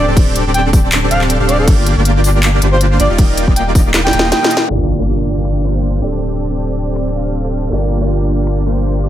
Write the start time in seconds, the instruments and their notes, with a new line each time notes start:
0.08 sub bass D1, supersaw synth C4 D4 G4 A4 D5
0.17 kick, closed hi-hat, crash
0.36 closed hi-hat
0.46 sub bass D1, supersaw synth C4 D4 G4 A4 D5
0.54 alto saxophone G5, closed hi-hat
0.73 kick, open hi-hat
0.92 clap, closed hi-hat
1.11 sub bass D1, supersaw synth C4 D4 G4 A4 F5, alto saxophone F5, closed hi-hat
1.21 clap
1.30 closed hi-hat
1.40 sub bass D1, supersaw synth C4 D4 G4 A4 F5
1.49 alto saxophone D5, closed hi-hat
1.59 alto saxophone A4
1.68 sub bass G1, supersaw synth A#3 D4 F4 G4 D5, kick, closed hi-hat, crash
1.86 closed hi-hat
1.97 sub bass G1, supersaw synth A#3 D4 F4 G4 D5
2.05 closed hi-hat
2.24 open hi-hat
2.43 clap, closed hi-hat
2.62 sub bass G1, supersaw synth A#3 D4 F4 G4 C5, closed hi-hat
2.72 alto saxophone C5
2.81 closed hi-hat
3.00 sub bass G1, supersaw synth A#3 D4 F4 G4 D5, alto saxophone D5, closed hi-hat
3.10 sub bass D#1, supersaw synth A#3 D#4 F4 G4 D5
3.19 kick, closed hi-hat, crash
3.37 closed hi-hat
3.48 sub bass D#1, supersaw synth A#3 D#4 F4 G4 D5, kick
3.56 alto saxophone G5, closed hi-hat
3.75 kick, open hi-hat
3.94 snare, clap, closed hi-hat
4.05 alto saxophone G5, snare
4.13 sub bass D#1, supersaw synth A#3 D#4 F4 G4 D#5, closed hi-hat
4.19 snare
4.32 alto saxophone G5, snare, closed hi-hat
4.42 supersaw synth A#3 D#4 F4 G4 D#5, snare
4.51 closed hi-hat
4.57 snare
4.68 sub bass G1, grand piano A#3 D4 F4 G4 D5, supersaw synth A#3 D4 F4 G4 D5, impact
4.99 supersaw synth A#3 D4 F4 G4 D5
5.26 open hi-hat
5.45 finger snap
5.64 supersaw synth A#3 D4 F4 G4 C5
6.00 sub bass D1, grand piano C4 D4 G4 A4, supersaw synth C4 D4 G4 A4 D5
6.04 grand piano D5
6.12 supersaw synth C4 D4 G4 A4 D5
6.50 supersaw synth C4 D4 G4 A4 D5
6.77 open hi-hat
6.96 finger snap
7.15 supersaw synth C4 D4 G4 A4 F5
7.44 supersaw synth C4 D4 G4 A4 F5
7.70 sub bass G1, grand piano A#3 D4 F4 G4 D5, supersaw synth A#3 D4 F4 G4 D5
8.01 supersaw synth A#3 D4 F4 G4 D5
8.28 open hi-hat
8.47 finger snap
8.66 supersaw synth A#3 D4 F4 G4 C5
9.03 supersaw synth A#3 D4 F4 G4 D5